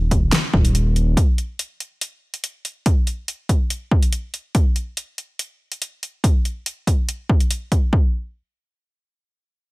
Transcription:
0, 0, Header, 1, 3, 480
1, 0, Start_track
1, 0, Tempo, 422535
1, 1327, Time_signature, 4, 2, 24, 8
1, 11035, End_track
2, 0, Start_track
2, 0, Title_t, "Detuned saw bass"
2, 0, Program_c, 0, 39
2, 0, Note_on_c, 0, 27, 99
2, 349, Note_off_c, 0, 27, 0
2, 608, Note_on_c, 0, 27, 95
2, 1309, Note_off_c, 0, 27, 0
2, 11035, End_track
3, 0, Start_track
3, 0, Title_t, "Drums"
3, 129, Note_on_c, 9, 36, 62
3, 129, Note_on_c, 9, 42, 53
3, 242, Note_off_c, 9, 36, 0
3, 243, Note_off_c, 9, 42, 0
3, 368, Note_on_c, 9, 38, 120
3, 368, Note_on_c, 9, 42, 76
3, 481, Note_off_c, 9, 38, 0
3, 481, Note_off_c, 9, 42, 0
3, 608, Note_on_c, 9, 36, 105
3, 722, Note_off_c, 9, 36, 0
3, 735, Note_on_c, 9, 42, 49
3, 848, Note_off_c, 9, 42, 0
3, 850, Note_on_c, 9, 42, 75
3, 964, Note_off_c, 9, 42, 0
3, 1091, Note_on_c, 9, 42, 51
3, 1205, Note_off_c, 9, 42, 0
3, 1329, Note_on_c, 9, 36, 113
3, 1332, Note_on_c, 9, 42, 74
3, 1442, Note_off_c, 9, 36, 0
3, 1445, Note_off_c, 9, 42, 0
3, 1570, Note_on_c, 9, 42, 50
3, 1684, Note_off_c, 9, 42, 0
3, 1809, Note_on_c, 9, 42, 74
3, 1922, Note_off_c, 9, 42, 0
3, 2049, Note_on_c, 9, 42, 51
3, 2163, Note_off_c, 9, 42, 0
3, 2288, Note_on_c, 9, 42, 74
3, 2401, Note_off_c, 9, 42, 0
3, 2654, Note_on_c, 9, 42, 49
3, 2768, Note_off_c, 9, 42, 0
3, 2768, Note_on_c, 9, 42, 74
3, 2882, Note_off_c, 9, 42, 0
3, 3009, Note_on_c, 9, 42, 49
3, 3123, Note_off_c, 9, 42, 0
3, 3248, Note_on_c, 9, 36, 112
3, 3248, Note_on_c, 9, 42, 73
3, 3361, Note_off_c, 9, 36, 0
3, 3361, Note_off_c, 9, 42, 0
3, 3487, Note_on_c, 9, 42, 48
3, 3601, Note_off_c, 9, 42, 0
3, 3728, Note_on_c, 9, 42, 71
3, 3841, Note_off_c, 9, 42, 0
3, 3967, Note_on_c, 9, 36, 57
3, 3968, Note_on_c, 9, 42, 51
3, 4081, Note_off_c, 9, 36, 0
3, 4082, Note_off_c, 9, 42, 0
3, 4207, Note_on_c, 9, 42, 75
3, 4321, Note_off_c, 9, 42, 0
3, 4447, Note_on_c, 9, 36, 96
3, 4560, Note_off_c, 9, 36, 0
3, 4572, Note_on_c, 9, 42, 48
3, 4686, Note_off_c, 9, 42, 0
3, 4686, Note_on_c, 9, 42, 74
3, 4800, Note_off_c, 9, 42, 0
3, 4926, Note_on_c, 9, 42, 48
3, 5040, Note_off_c, 9, 42, 0
3, 5166, Note_on_c, 9, 36, 112
3, 5166, Note_on_c, 9, 42, 75
3, 5279, Note_off_c, 9, 42, 0
3, 5280, Note_off_c, 9, 36, 0
3, 5405, Note_on_c, 9, 42, 50
3, 5519, Note_off_c, 9, 42, 0
3, 5646, Note_on_c, 9, 42, 75
3, 5760, Note_off_c, 9, 42, 0
3, 5886, Note_on_c, 9, 42, 51
3, 5999, Note_off_c, 9, 42, 0
3, 6126, Note_on_c, 9, 42, 75
3, 6240, Note_off_c, 9, 42, 0
3, 6493, Note_on_c, 9, 42, 50
3, 6606, Note_off_c, 9, 42, 0
3, 6607, Note_on_c, 9, 42, 72
3, 6721, Note_off_c, 9, 42, 0
3, 6848, Note_on_c, 9, 42, 51
3, 6962, Note_off_c, 9, 42, 0
3, 7086, Note_on_c, 9, 36, 113
3, 7089, Note_on_c, 9, 42, 78
3, 7200, Note_off_c, 9, 36, 0
3, 7202, Note_off_c, 9, 42, 0
3, 7330, Note_on_c, 9, 42, 51
3, 7444, Note_off_c, 9, 42, 0
3, 7567, Note_on_c, 9, 42, 77
3, 7680, Note_off_c, 9, 42, 0
3, 7807, Note_on_c, 9, 36, 58
3, 7809, Note_on_c, 9, 42, 52
3, 7921, Note_off_c, 9, 36, 0
3, 7922, Note_off_c, 9, 42, 0
3, 8049, Note_on_c, 9, 42, 78
3, 8163, Note_off_c, 9, 42, 0
3, 8287, Note_on_c, 9, 36, 96
3, 8400, Note_off_c, 9, 36, 0
3, 8412, Note_on_c, 9, 42, 49
3, 8525, Note_off_c, 9, 42, 0
3, 8526, Note_on_c, 9, 42, 76
3, 8639, Note_off_c, 9, 42, 0
3, 8766, Note_on_c, 9, 36, 58
3, 8767, Note_on_c, 9, 42, 51
3, 8880, Note_off_c, 9, 36, 0
3, 8880, Note_off_c, 9, 42, 0
3, 9006, Note_on_c, 9, 36, 109
3, 9119, Note_off_c, 9, 36, 0
3, 11035, End_track
0, 0, End_of_file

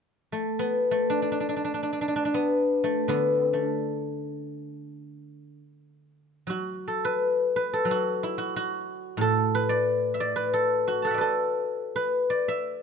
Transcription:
0, 0, Header, 1, 2, 480
1, 0, Start_track
1, 0, Tempo, 500000
1, 12312, End_track
2, 0, Start_track
2, 0, Title_t, "Guzheng"
2, 0, Program_c, 0, 107
2, 310, Note_on_c, 0, 57, 44
2, 568, Note_on_c, 0, 59, 52
2, 872, Note_off_c, 0, 57, 0
2, 876, Note_on_c, 0, 57, 51
2, 1053, Note_on_c, 0, 62, 57
2, 1168, Note_off_c, 0, 62, 0
2, 1172, Note_on_c, 0, 62, 40
2, 1260, Note_off_c, 0, 62, 0
2, 1264, Note_on_c, 0, 62, 45
2, 1343, Note_off_c, 0, 62, 0
2, 1347, Note_on_c, 0, 62, 39
2, 1425, Note_off_c, 0, 62, 0
2, 1429, Note_on_c, 0, 62, 43
2, 1498, Note_off_c, 0, 62, 0
2, 1501, Note_on_c, 0, 62, 37
2, 1575, Note_off_c, 0, 62, 0
2, 1579, Note_on_c, 0, 62, 43
2, 1666, Note_off_c, 0, 62, 0
2, 1670, Note_on_c, 0, 62, 38
2, 1751, Note_off_c, 0, 62, 0
2, 1755, Note_on_c, 0, 62, 44
2, 1846, Note_off_c, 0, 62, 0
2, 1849, Note_on_c, 0, 62, 39
2, 1927, Note_off_c, 0, 62, 0
2, 1931, Note_on_c, 0, 62, 46
2, 1993, Note_off_c, 0, 62, 0
2, 1997, Note_on_c, 0, 62, 41
2, 2068, Note_off_c, 0, 62, 0
2, 2071, Note_on_c, 0, 62, 55
2, 2156, Note_off_c, 0, 62, 0
2, 2160, Note_on_c, 0, 62, 45
2, 2244, Note_off_c, 0, 59, 0
2, 2248, Note_on_c, 0, 59, 59
2, 2720, Note_off_c, 0, 57, 0
2, 2724, Note_on_c, 0, 57, 50
2, 2956, Note_on_c, 0, 50, 42
2, 2962, Note_off_c, 0, 62, 0
2, 2966, Note_off_c, 0, 59, 0
2, 2966, Note_on_c, 0, 59, 57
2, 3254, Note_off_c, 0, 59, 0
2, 3254, Note_on_c, 0, 60, 57
2, 3388, Note_off_c, 0, 57, 0
2, 3388, Note_off_c, 0, 60, 0
2, 3388, Note_on_c, 0, 61, 57
2, 3391, Note_on_c, 0, 57, 34
2, 3532, Note_off_c, 0, 61, 0
2, 3532, Note_on_c, 0, 62, 57
2, 4967, Note_off_c, 0, 57, 0
2, 5370, Note_off_c, 0, 50, 0
2, 5653, Note_off_c, 0, 62, 0
2, 6209, Note_on_c, 0, 54, 37
2, 6237, Note_on_c, 0, 66, 51
2, 6601, Note_on_c, 0, 69, 48
2, 6765, Note_on_c, 0, 71, 58
2, 7255, Note_off_c, 0, 71, 0
2, 7258, Note_on_c, 0, 71, 53
2, 7421, Note_off_c, 0, 69, 0
2, 7425, Note_on_c, 0, 69, 55
2, 7523, Note_off_c, 0, 54, 0
2, 7535, Note_on_c, 0, 54, 44
2, 7590, Note_off_c, 0, 66, 0
2, 7594, Note_on_c, 0, 66, 59
2, 7903, Note_on_c, 0, 64, 56
2, 8041, Note_off_c, 0, 66, 0
2, 8044, Note_on_c, 0, 66, 62
2, 8217, Note_off_c, 0, 66, 0
2, 8221, Note_on_c, 0, 66, 67
2, 8805, Note_on_c, 0, 45, 49
2, 8839, Note_off_c, 0, 69, 0
2, 8843, Note_on_c, 0, 69, 69
2, 9161, Note_off_c, 0, 71, 0
2, 9165, Note_on_c, 0, 71, 67
2, 9305, Note_on_c, 0, 74, 73
2, 9445, Note_off_c, 0, 54, 0
2, 9735, Note_on_c, 0, 76, 47
2, 9791, Note_off_c, 0, 74, 0
2, 9795, Note_on_c, 0, 74, 64
2, 9940, Note_off_c, 0, 71, 0
2, 9944, Note_on_c, 0, 71, 59
2, 10110, Note_off_c, 0, 69, 0
2, 10114, Note_on_c, 0, 69, 63
2, 10406, Note_off_c, 0, 64, 0
2, 10437, Note_off_c, 0, 66, 0
2, 10441, Note_on_c, 0, 66, 57
2, 10580, Note_on_c, 0, 81, 26
2, 10600, Note_off_c, 0, 69, 0
2, 10603, Note_on_c, 0, 69, 55
2, 10623, Note_on_c, 0, 78, 31
2, 10658, Note_off_c, 0, 76, 0
2, 10662, Note_on_c, 0, 76, 33
2, 10693, Note_off_c, 0, 74, 0
2, 10696, Note_on_c, 0, 74, 37
2, 10727, Note_off_c, 0, 71, 0
2, 10731, Note_on_c, 0, 71, 42
2, 10753, Note_off_c, 0, 45, 0
2, 10757, Note_off_c, 0, 69, 0
2, 10761, Note_on_c, 0, 69, 58
2, 11474, Note_off_c, 0, 71, 0
2, 11478, Note_on_c, 0, 71, 61
2, 11803, Note_off_c, 0, 74, 0
2, 11807, Note_on_c, 0, 74, 60
2, 11970, Note_off_c, 0, 81, 0
2, 11980, Note_off_c, 0, 76, 0
2, 11984, Note_on_c, 0, 76, 65
2, 12163, Note_off_c, 0, 78, 0
2, 12312, Note_off_c, 0, 66, 0
2, 12312, Note_off_c, 0, 69, 0
2, 12312, Note_off_c, 0, 71, 0
2, 12312, Note_off_c, 0, 74, 0
2, 12312, Note_off_c, 0, 76, 0
2, 12312, End_track
0, 0, End_of_file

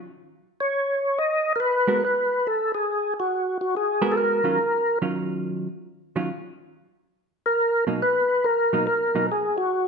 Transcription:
0, 0, Header, 1, 3, 480
1, 0, Start_track
1, 0, Key_signature, -6, "minor"
1, 0, Tempo, 427960
1, 1304, Time_signature, 4, 2, 24, 8
1, 11080, End_track
2, 0, Start_track
2, 0, Title_t, "Tonewheel organ"
2, 0, Program_c, 0, 16
2, 678, Note_on_c, 0, 73, 84
2, 1328, Note_on_c, 0, 75, 102
2, 1333, Note_off_c, 0, 73, 0
2, 1712, Note_off_c, 0, 75, 0
2, 1746, Note_on_c, 0, 70, 66
2, 1792, Note_off_c, 0, 70, 0
2, 1795, Note_on_c, 0, 71, 86
2, 2282, Note_off_c, 0, 71, 0
2, 2296, Note_on_c, 0, 71, 82
2, 2770, Note_on_c, 0, 69, 81
2, 2775, Note_off_c, 0, 71, 0
2, 3050, Note_off_c, 0, 69, 0
2, 3079, Note_on_c, 0, 68, 81
2, 3517, Note_off_c, 0, 68, 0
2, 3586, Note_on_c, 0, 66, 74
2, 4011, Note_off_c, 0, 66, 0
2, 4050, Note_on_c, 0, 66, 65
2, 4206, Note_off_c, 0, 66, 0
2, 4224, Note_on_c, 0, 68, 83
2, 4618, Note_on_c, 0, 69, 53
2, 4643, Note_off_c, 0, 68, 0
2, 4670, Note_off_c, 0, 69, 0
2, 4682, Note_on_c, 0, 70, 82
2, 5590, Note_off_c, 0, 70, 0
2, 8367, Note_on_c, 0, 70, 102
2, 8800, Note_off_c, 0, 70, 0
2, 9000, Note_on_c, 0, 71, 98
2, 9471, Note_on_c, 0, 70, 85
2, 9486, Note_off_c, 0, 71, 0
2, 9935, Note_off_c, 0, 70, 0
2, 9949, Note_on_c, 0, 70, 85
2, 10392, Note_off_c, 0, 70, 0
2, 10448, Note_on_c, 0, 68, 92
2, 10727, Note_off_c, 0, 68, 0
2, 10741, Note_on_c, 0, 66, 86
2, 11080, Note_off_c, 0, 66, 0
2, 11080, End_track
3, 0, Start_track
3, 0, Title_t, "Hollow-body jazz guitar"
3, 0, Program_c, 1, 26
3, 2103, Note_on_c, 1, 56, 68
3, 2110, Note_on_c, 1, 66, 69
3, 2114, Note_on_c, 1, 59, 72
3, 2117, Note_on_c, 1, 70, 73
3, 2250, Note_off_c, 1, 56, 0
3, 2254, Note_off_c, 1, 66, 0
3, 2256, Note_off_c, 1, 59, 0
3, 2258, Note_off_c, 1, 70, 0
3, 4504, Note_on_c, 1, 56, 78
3, 4508, Note_on_c, 1, 70, 82
3, 4510, Note_on_c, 1, 59, 75
3, 4511, Note_on_c, 1, 66, 80
3, 4951, Note_off_c, 1, 56, 0
3, 4953, Note_off_c, 1, 70, 0
3, 4954, Note_off_c, 1, 59, 0
3, 4955, Note_off_c, 1, 66, 0
3, 4976, Note_on_c, 1, 51, 65
3, 4982, Note_on_c, 1, 54, 74
3, 4987, Note_on_c, 1, 65, 74
3, 4993, Note_on_c, 1, 61, 73
3, 5128, Note_off_c, 1, 51, 0
3, 5131, Note_off_c, 1, 54, 0
3, 5134, Note_off_c, 1, 65, 0
3, 5137, Note_off_c, 1, 61, 0
3, 5629, Note_on_c, 1, 51, 55
3, 5630, Note_on_c, 1, 54, 60
3, 5631, Note_on_c, 1, 61, 57
3, 5643, Note_on_c, 1, 65, 66
3, 6359, Note_off_c, 1, 51, 0
3, 6360, Note_off_c, 1, 54, 0
3, 6360, Note_off_c, 1, 61, 0
3, 6366, Note_off_c, 1, 65, 0
3, 6907, Note_on_c, 1, 51, 63
3, 6910, Note_on_c, 1, 54, 65
3, 6912, Note_on_c, 1, 61, 68
3, 6919, Note_on_c, 1, 65, 81
3, 7054, Note_off_c, 1, 51, 0
3, 7055, Note_off_c, 1, 54, 0
3, 7056, Note_off_c, 1, 61, 0
3, 7060, Note_off_c, 1, 65, 0
3, 8825, Note_on_c, 1, 47, 64
3, 8832, Note_on_c, 1, 54, 63
3, 8834, Note_on_c, 1, 58, 75
3, 8844, Note_on_c, 1, 63, 61
3, 8972, Note_off_c, 1, 47, 0
3, 8975, Note_off_c, 1, 54, 0
3, 8976, Note_off_c, 1, 58, 0
3, 8982, Note_off_c, 1, 63, 0
3, 9792, Note_on_c, 1, 47, 55
3, 9792, Note_on_c, 1, 54, 64
3, 9799, Note_on_c, 1, 58, 63
3, 9805, Note_on_c, 1, 63, 69
3, 9934, Note_off_c, 1, 47, 0
3, 9934, Note_off_c, 1, 54, 0
3, 9938, Note_off_c, 1, 58, 0
3, 9941, Note_off_c, 1, 63, 0
3, 10260, Note_on_c, 1, 47, 49
3, 10267, Note_on_c, 1, 54, 60
3, 10269, Note_on_c, 1, 63, 61
3, 10273, Note_on_c, 1, 58, 59
3, 10408, Note_off_c, 1, 47, 0
3, 10411, Note_off_c, 1, 54, 0
3, 10412, Note_off_c, 1, 63, 0
3, 10414, Note_off_c, 1, 58, 0
3, 11080, End_track
0, 0, End_of_file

